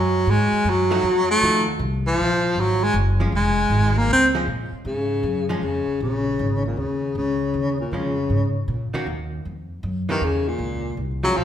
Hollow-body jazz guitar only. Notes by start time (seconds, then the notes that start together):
0.91 F3 A3 D#4 F#4
1.43 F3 A3 D#4 F#4
3.20 F3 G#3 C#4
4.35 F3 G#3 C#4
5.49 F3 G#3 C#4
7.93 F3 G#3 C#4
8.94 D#3 A#3 C#4 F#4
10.09 E3 A#3 C#4 G4
11.23 F3 G#3 C#4